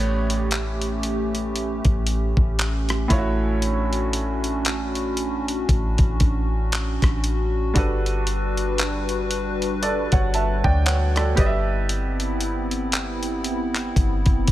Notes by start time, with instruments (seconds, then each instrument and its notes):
Already playing: 808-style bass A1, grand piano A2 A3 B3 G4 A4 C#5 D5, analog synth pad A3 C#4 G4
0.30 closed hi-hat
0.51 clap, closed hi-hat
0.82 closed hi-hat
1.03 closed hi-hat
1.35 closed hi-hat
1.56 closed hi-hat
1.85 808-style bass A1, kick, closed hi-hat
2.07 closed hi-hat
2.37 808-style bass A1, kick
2.59 clap, closed hi-hat
2.89 cross-stick, closed hi-hat
3.08 808-style bass A1, grand piano A2 A3 E4 F4, analog synth pad D4 F#4, kick, closed hi-hat, open hi-hat
3.12 grand piano C#5
3.18 grand piano F#4
3.62 closed hi-hat
3.93 closed hi-hat
4.13 closed hi-hat
4.44 closed hi-hat
4.65 clap, closed hi-hat
4.95 closed hi-hat
5.17 closed hi-hat
5.48 closed hi-hat
5.69 808-style bass A1, kick, closed hi-hat
5.98 808-style bass A1, kick, closed hi-hat
6.20 808-style bass A1, kick, closed hi-hat
6.72 clap, closed hi-hat
7.02 808-style bass A1, kick, cross-stick, closed hi-hat
7.24 closed hi-hat, open hi-hat
7.74 808-style bass G1, grand piano G3 D4 F#4 A4, analog synth pad G3 D4 B4, kick, closed hi-hat
7.78 grand piano B4
8.06 closed hi-hat
8.27 closed hi-hat
8.57 closed hi-hat
8.78 clap, closed hi-hat
9.09 closed hi-hat
9.31 closed hi-hat
9.62 closed hi-hat
9.83 grand piano A4 D5, closed hi-hat
10.12 808-style bass G1, grand piano C#5 F#5, kick, closed hi-hat
10.34 grand piano E5 A5, closed hi-hat
10.64 808-style bass D2, grand piano D5 G5, kick
10.86 grand piano C#5 F#5, clap, closed hi-hat
11.16 grand piano A4 D5, cross-stick, closed hi-hat
11.35 808-style bass G1, grand piano G3 G4 B4 D5, analog synth pad B3 C4 E4, kick, closed hi-hat, open hi-hat
11.40 grand piano D#5
11.46 grand piano E5
11.89 closed hi-hat
12.20 closed hi-hat
12.41 closed hi-hat
12.71 closed hi-hat
12.92 clap, closed hi-hat
13.23 closed hi-hat
13.44 closed hi-hat
13.75 clap, closed hi-hat
13.96 808-style bass G1, kick, closed hi-hat
14.26 808-style bass F#1, kick, closed hi-hat
14.47 808-style bass G1, kick, closed hi-hat